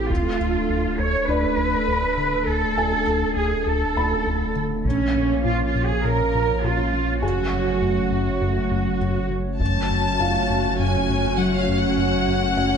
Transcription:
Already playing: sub bass A1, felt piano B4
0.09 sub bass D1, analog synth bass D2, analog synth pad A3 D4 A4, cello section F4, taiko
0.40 analog synth bass D2
0.69 analog synth bass D2
0.99 analog synth bass D2, cello section C#5
1.28 analog synth bass D2, felt piano D4 D5, cello section B4
1.58 analog synth bass D2
1.88 analog synth bass D2
2.17 analog synth bass D3
2.47 analog synth bass D2, cello section A4
2.77 analog synth bass D2, felt piano G#5
3.07 analog synth bass D2
3.36 analog synth bass D2, cello section G#4
3.65 analog synth bass D2, cello section A4
3.97 analog synth bass D2, felt piano B5
4.26 analog synth bass D2
4.56 analog synth bass D3
4.84 sub bass A#1, analog synth bass A#2, analog synth pad F3 A#3 C#4 C#5, cello section C#4, taiko
5.16 analog synth bass A#2
5.45 analog synth bass A#2, cello section F4
5.65 cello section F4
5.75 analog synth bass A#2
5.85 cello section G#4
6.04 analog synth bass A#2, cello section A#4
6.35 analog synth bass A#2
6.64 analog synth bass A#2, cello section F4
6.94 analog synth bass A#3
7.22 sub bass F#1, analog synth bass F#2, analog synth pad F#3 A3, cello section F#4, felt piano G#4 G#5
7.53 analog synth bass F#2
7.82 analog synth bass F#2
8.12 analog synth bass F#2
8.41 analog synth bass F#2
8.71 analog synth bass F#2
9.01 analog synth bass F#2
9.31 analog synth bass F#3
9.60 sub bass F#1, cello section F#2, analog synth bass F#2, analog synth pad F#3 A3 C#4 C#5, french horn section F#3 C#4, viola section C#4 F#4, violin section A5, taiko
9.91 analog synth bass F#2
10.20 analog synth bass F#2, felt piano F4 F5
10.49 analog synth bass F#2
10.79 analog synth bass F#2, violin section G#5
11.09 analog synth bass F#2
11.38 analog synth bass F#3, violin section F#5
11.59 violin section F5
11.68 analog synth bass F#2
11.79 violin section F#5
11.98 analog synth bass F#2, violin section F#5
12.28 analog synth bass F#2
12.57 analog synth bass F#2, felt piano F#5

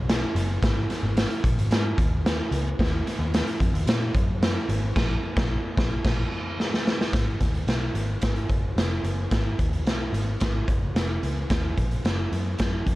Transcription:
Already playing: picked electric bass B1
0.09 snare, closed hi-hat
0.35 picked electric bass F#1, closed hi-hat
0.63 picked electric bass G#1, kick, snare, closed hi-hat
0.90 snare, closed hi-hat
1.03 picked electric bass G#1
1.17 snare, closed hi-hat
1.30 closed hi-hat
1.44 picked electric bass A#1, kick, closed hi-hat
1.58 picked electric bass G#1, closed hi-hat
1.71 picked electric bass G#2, snare, closed hi-hat
1.98 picked electric bass D#2, kick, closed hi-hat
2.26 snare, closed hi-hat
2.51 picked electric bass C#2, closed hi-hat
2.79 picked electric bass D#2, kick, snare, closed hi-hat
3.07 snare, closed hi-hat
3.19 picked electric bass D#2
3.34 snare, closed hi-hat
3.47 closed hi-hat
3.60 picked electric bass F2, kick, closed hi-hat
3.73 picked electric bass D#2, closed hi-hat
3.87 picked electric bass A#2, snare, closed hi-hat
4.14 picked electric bass F#2, kick, closed hi-hat
4.43 snare, closed hi-hat
4.69 picked electric bass G#1, closed hi-hat
4.96 picked electric bass A#1, kick, snare, crash
5.37 picked electric bass A#1, kick, snare
5.77 picked electric bass A#1, kick, snare
6.04 picked electric bass A#1, kick, snare, crash
6.60 snare
6.74 snare
6.87 snare
7.01 snare
7.13 picked electric bass G#1, kick, snare, closed hi-hat
7.40 picked electric bass D#2, kick, snare, closed hi-hat
7.54 closed hi-hat
7.67 picked electric bass B1, snare, closed hi-hat
7.94 picked electric bass G#1, closed hi-hat
8.21 picked electric bass G#1, kick, snare, closed hi-hat
8.36 closed hi-hat
8.49 picked electric bass F#1, kick, closed hi-hat
8.76 picked electric bass F1, snare, closed hi-hat
9.03 picked electric bass F#1, closed hi-hat
9.31 picked electric bass G#1, kick, snare, closed hi-hat
9.59 picked electric bass D#2, kick, closed hi-hat
9.73 closed hi-hat
9.86 picked electric bass B1, snare, closed hi-hat
10.12 picked electric bass G#1, closed hi-hat
10.40 picked electric bass G#1, kick, snare, closed hi-hat
10.68 picked electric bass F#1, kick, closed hi-hat
10.95 picked electric bass F1, snare, closed hi-hat
11.23 picked electric bass C#2, closed hi-hat
11.50 picked electric bass D#2, kick, snare, closed hi-hat
11.77 picked electric bass A#1, kick, closed hi-hat
11.91 closed hi-hat
12.05 picked electric bass F#1, snare, closed hi-hat
12.32 picked electric bass F#2, closed hi-hat
12.58 picked electric bass F#2, kick, snare, closed hi-hat
12.86 picked electric bass F2, kick, closed hi-hat

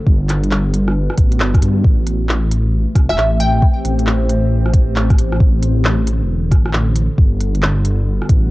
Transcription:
Already playing: ambient pad D3
0.07 detuned saw bass G1, kick
0.29 ambient pad G3, clap, closed hi-hat
0.43 closed hi-hat
0.48 ambient pad B4, clap
0.68 ambient pad B3
0.74 closed hi-hat
0.88 ambient pad F#4, cross-stick
1.10 cross-stick
1.17 detuned saw bass A1, kick, closed hi-hat
1.32 closed hi-hat
1.40 detuned saw bass G1, clap
1.54 kick, cross-stick, closed hi-hat
1.62 detuned saw bass G2, closed hi-hat
1.84 detuned saw bass A1, ambient pad E3, kick
1.91 ambient pad A3
2.07 closed hi-hat
2.29 clap
2.40 ambient pad C4
2.48 ambient pad G4, closed hi-hat
2.95 detuned saw bass C2, kick, cross-stick, closed hi-hat
3.02 ambient pad C5
3.09 detuned saw bass E1, synth pluck E5, cross-stick
3.18 detuned saw bass A1, clap
3.40 synth pluck G5, closed hi-hat
3.62 kick
3.84 detuned saw bass A1, closed hi-hat
3.99 closed hi-hat
4.07 clap
4.29 closed hi-hat
4.66 cross-stick
4.73 detuned saw bass A1, kick, closed hi-hat
4.96 clap
5.10 kick, cross-stick, closed hi-hat
5.19 closed hi-hat
5.32 cross-stick
5.40 detuned saw bass A1, ambient pad D3, kick
5.63 closed hi-hat
5.85 clap
6.07 closed hi-hat
6.21 detuned saw bass E1
6.51 detuned saw bass A1, kick, cross-stick, closed hi-hat
6.66 cross-stick
6.73 clap
6.96 closed hi-hat
7.18 detuned saw bass G1, kick
7.37 ambient pad G3, closed hi-hat
7.55 closed hi-hat
7.63 clap
7.68 ambient pad B3
7.85 closed hi-hat
7.92 ambient pad F#4
8.00 ambient pad B4
8.22 cross-stick
8.29 detuned saw bass A1, kick, closed hi-hat

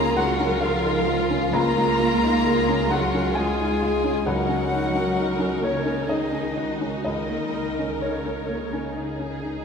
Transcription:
Already playing: felt piano C#2 C#4 D#4 F4 A#5, double bass section C#2, french horn section A#3, cello section A#3, violin section F4 A#5, viola section G#4, clarinet A#4, flute A#5
0.17 french horn section F#3, cello section F#3, felt piano G#3 F#5, clarinet F#4, viola section A#4, flute F#5, violin section F#5
0.40 felt piano C#4
0.61 french horn section F3, cello section F3, clarinet F4, felt piano F4 F5, violin section F5, flute F5
0.84 felt piano D#4
1.07 felt piano F4
1.30 felt piano C#4
1.53 felt piano C#2 A#5, french horn section A#3, cello section A#3, viola section F4, clarinet A#4, flute A#5, violin section A#5
1.77 felt piano G#3
2.00 felt piano F4
2.23 felt piano D#4
2.46 felt piano F4, viola section G#4
2.69 felt piano C#4
2.89 french horn section F#3, cello section F#3, felt piano G#3 F#5, clarinet F#4, viola section A#4, flute F#5, violin section F#5
3.14 felt piano C#4
3.35 french horn section G#3, cello section G#3, viola section F4, felt piano F4 G#5, clarinet G#4, flute G#5, violin section G#5
3.60 felt piano D#4
3.82 felt piano F4, viola section G#4
4.04 felt piano C#4
4.25 felt piano C#2 F#5, double bass section C#2, french horn section F#3, cello section F#3, violin section D#4 F#5, clarinet F#4, viola section A#4, flute F#5
4.49 felt piano C#4
4.72 felt piano D#4, viola section A#4
4.95 felt piano C#4
5.17 felt piano D#4
5.39 felt piano C#4
5.61 cello section C#3, french horn section C#3, felt piano A#3 C#5, clarinet C#4, flute C#5, violin section C#5
5.85 felt piano C#4
6.09 cello section D#3, french horn section D#3, felt piano D#4 D#5, clarinet D#4, viola section G#4, flute D#5, violin section D#5
6.32 felt piano C#4
6.56 felt piano D#4, viola section F#4
6.81 felt piano C#4
7.04 felt piano C#2 D#5, french horn section D#3, cello section D#3, clarinet D#4, viola section A#4, flute D#5, violin section D#5
7.29 felt piano A#3
7.53 felt piano D#4
7.79 felt piano C#4
8.01 cello section C#3, french horn section C#3, clarinet C#4, felt piano D#4 C#5, flute C#5, violin section C#5
8.26 felt piano C#4
8.49 felt piano A#3
8.73 felt piano C#4
8.96 felt piano D#4, violin section G#4
9.19 felt piano C#4
9.43 felt piano D#4

